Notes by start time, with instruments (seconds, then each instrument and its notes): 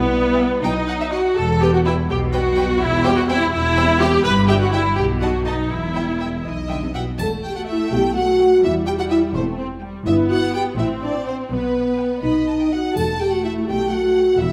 Already playing: double bass section B1, cello section B2, french horn section G3 E4, viola section B3, violin section B4
0.38 violin section E5 G5
0.63 double bass section B1, cello section B2, french horn section F#3 B3, viola section D#4, violin section D#5 G5
0.88 violin section F#5
1.01 violin section E5
1.12 viola section F#4, violin section D#5 F#5
1.36 double bass section E1, cello section E2, viola section A4, violin section A5
1.61 french horn section G3 B3, viola section G4, violin section B4 G5
1.73 viola section F#4, violin section F#5
1.86 french horn section G3 B3, viola section E4, violin section B4 E5 G5
2.09 double bass section B1, cello section B2, viola section G4, violin section G5
2.33 french horn section G3 B3, viola section F#4, violin section B4 F#5 G5
2.57 french horn section G3 B3, violin section B4 G5
2.80 double bass section E1, cello section E2, viola section E4, violin section E5
3.05 french horn section G3 C4, viola section G4, violin section C5 G5
3.17 viola section F#4, violin section F#5
3.29 french horn section G3 C4, viola section E4, violin section C5 E5 G5
3.53 double bass section E1, cello section E2, viola section E4, violin section E5
3.77 french horn section G3 C4, violin section C5 G5
4.00 french horn section G3 C4, viola section G4, violin section C5 G5
4.24 double bass section G1, cello section G2, viola section B4, violin section B5
4.48 french horn section G3 E4, viola section G4, violin section E5 G5
4.60 viola section F#4, violin section F#5
4.72 french horn section G3 E4, viola section E4, violin section E5 G5
4.96 double bass section B1, cello section B2, viola section G4, violin section G5
5.20 french horn section A3 D#4, viola section F#4, violin section D#5 F#5 A5
5.45 french horn section A3 D#4, viola section D#4, violin section D#5 A5
5.70 double bass section E1, cello section E2, viola section E4, violin section E5
5.95 french horn section G3 E4, violin section E5 G5
6.21 french horn section G3 E4, violin section E5 G5
6.44 double bass section B1, cello section E3, french horn section D#4, violin section D#5
6.69 cello section D3, french horn section G3 E4, violin section E5 G5
6.82 cello section C3
6.94 cello section B2, french horn section G3 E4 F#4, violin section E5 F#5 G5
7.18 double bass section E1, cello section E2, viola section A3, french horn section A4, violin section A5, triangle
7.43 french horn section G4, violin section G5
7.56 french horn section F#4, violin section F#5
7.67 french horn section E4, violin section E5 G5
7.91 double bass section B1, cello section B2, french horn section G4, violin section G5
8.15 french horn section F#4, violin section F#5
8.39 violin section G5
8.63 double bass section E1, cello section E2, viola section G3, french horn section E4, violin section E5
8.87 french horn section G4, violin section G5
8.99 french horn section F#4, violin section F#5
9.10 french horn section E4, violin section E5 G5
9.34 double bass section E1, cello section E2, viola section A3, french horn section C4, violin section C5
9.59 viola section C4
9.81 viola section G3, violin section G5
10.05 double bass section G1, cello section G2, viola section B3, french horn section E4, violin section E5
10.31 french horn section F#4, violin section F#5
10.53 french horn section G4, violin section G5
10.77 double bass section A1, cello section A2, viola section C4, french horn section E4, violin section E5
11.03 french horn section D4, violin section D5
11.26 french horn section C4, violin section C5 F#5
11.50 double bass section B1, cello section B2, viola section B3, french horn section B3, violin section B4
11.99 violin section G5
12.22 double bass section B1, cello section B2, french horn section D#4, violin section D#5 B5
12.48 violin section A5
12.60 violin section G5
12.72 french horn section F#4, violin section F#5
12.95 double bass section E1, cello section E2, viola section A3, french horn section A4, violin section A5, triangle
13.21 french horn section G4, violin section G5
13.32 french horn section F#4, violin section F#5
13.43 french horn section E4, violin section E5 G5
13.67 double bass section B1, cello section B2, french horn section G4, violin section G5
13.92 french horn section F#4, violin section F#5
14.16 violin section G5
14.40 double bass section E1, cello section E2, viola section G3, french horn section E4, violin section E5